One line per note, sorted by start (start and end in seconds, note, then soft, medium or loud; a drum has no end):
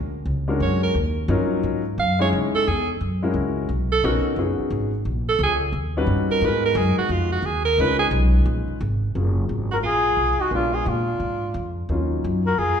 0.00 0.25 D2 loud
0.26 0.59 C#2 medium
0.48 0.93 G#3 medium
0.48 0.93 C#4 medium
0.48 0.93 D4 medium
0.48 0.93 F#4 medium
0.48 0.93 A#4 medium
0.60 0.94 F#2 medium
0.60 0.82 C#5 medium
0.83 0.95 A#4 medium
0.95 1.28 D#2 medium
1.28 1.62 G2 loud
1.28 1.81 F#3 medium
1.28 1.81 C#4 medium
1.28 1.81 D#4 medium
1.28 1.81 F4 medium
1.28 1.81 A#4 medium
1.63 1.97 G#2 medium
1.98 2.31 F#2 loud
1.98 2.19 F5 loud
2.19 2.64 G#3 medium
2.19 2.64 C#4 medium
2.19 2.64 D#4 medium
2.19 2.65 E4 medium
2.19 2.65 G#4 medium
2.19 2.29 C#5 loud
2.33 2.53 C#2 medium
2.54 2.69 A4 loud
2.54 muted upright bass stroke soft
2.67 3.00 E2 loud
2.67 2.89 G#4 medium
3.01 3.33 F#2 medium
3.22 3.67 G#3 medium
3.22 3.67 C#4 medium
3.22 3.67 E4 medium
3.22 3.67 F#4 medium
3.22 3.68 A#4 medium
3.34 3.68 C#2 medium
3.69 4.02 B1 medium
3.92 4.07 A4 loud
4.04 4.23 A#1 medium
4.04 4.37 B3 medium
4.04 4.37 C#4 medium
4.04 4.37 D#4 medium
4.04 4.37 F#4 medium
4.04 4.26 F#4 medium
4.04 4.37 A#4 medium
4.24 muted upright bass stroke soft
4.36 4.57 F#1 medium
4.36 4.89 B3 medium
4.36 4.90 C#4 medium
4.36 4.90 D#4 medium
4.36 4.90 F#4 medium
4.36 4.90 G#4 medium
4.59 muted upright bass stroke soft
4.70 5.04 G#1 medium
5.05 5.38 A#1 medium
5.29 5.40 A4 loud
5.39 5.72 C#2 loud
5.43 5.55 G#4 loud
5.72 6.06 D#2 medium
5.97 6.41 G3 medium
5.97 6.41 C#4 medium
5.97 6.41 D#4 medium
5.97 6.41 F#4 medium
5.97 6.41 B4 medium
6.07 6.28 G2 medium
6.29 6.47 A#4 loud
6.29 muted upright bass stroke soft
6.41 6.74 G#2 loud
6.41 7.38 G#3 medium
6.41 7.38 B3 medium
6.41 7.38 D#4 medium
6.41 7.39 F#4 medium
6.41 7.39 A#4 medium
6.41 6.65 B4 loud
6.66 6.79 A#4 loud
6.75 6.96 F#2 loud
6.75 6.98 G#4 medium
6.97 7.13 F#4 medium
6.97 muted upright bass stroke soft
7.09 7.42 F2 medium
7.09 7.32 F4 medium
7.32 7.47 F#4 medium
7.42 7.77 D#2 loud
7.42 7.64 G#4 medium
7.65 7.82 A#4 loud
7.78 8.10 C#2 medium
7.78 8.74 G#3 medium
7.78 8.74 C#4 medium
7.78 8.75 D#4 medium
7.78 8.75 F4 medium
7.78 7.98 B4 loud
7.78 8.75 B4 medium
7.99 8.07 G#4 loud
8.11 8.45 B1 loud
8.45 8.67 A#1 loud
8.68 muted upright bass stroke soft
8.81 9.14 G#1 medium
9.15 9.49 F#1 medium
9.15 10.11 F#3 soft
9.15 10.11 A#3 soft
9.15 10.11 C#4 soft
9.15 10.11 F4 soft
9.15 10.11 G#4 soft
9.49 9.82 G#1 medium
9.71 9.77 F#4 medium
9.71 9.78 A#4 medium
9.83 10.16 A#1 medium
9.83 10.41 F4 medium
9.83 10.42 G#4 loud
10.17 10.38 B1 medium
10.38 10.53 D#4 medium
10.38 10.53 F#4 medium
10.38 muted upright bass stroke soft
10.51 10.85 A#1 medium
10.51 11.04 G#3 soft
10.51 11.04 A#3 medium
10.51 11.04 B3 soft
10.51 11.04 D4 medium
10.51 10.75 D4 medium
10.51 11.04 F4 medium
10.51 10.76 F4 medium
10.73 10.88 F4 medium
10.73 10.90 G#4 medium
10.86 11.19 A#2 medium
10.86 11.77 D4 medium
10.86 11.78 F4 medium
11.20 11.54 G#2 medium
11.54 11.88 F2 medium
11.89 12.23 D#2 medium
11.89 12.41 F#3 medium
11.89 12.41 A#3 medium
11.89 12.42 C#4 medium
11.89 12.42 D#4 medium
11.89 12.42 F4 medium
12.24 12.57 F#2 medium
12.47 12.60 F#4 medium
12.47 12.60 A#4 loud
12.58 12.78 F2 medium
12.58 12.80 F4 medium
12.58 12.80 G#4 loud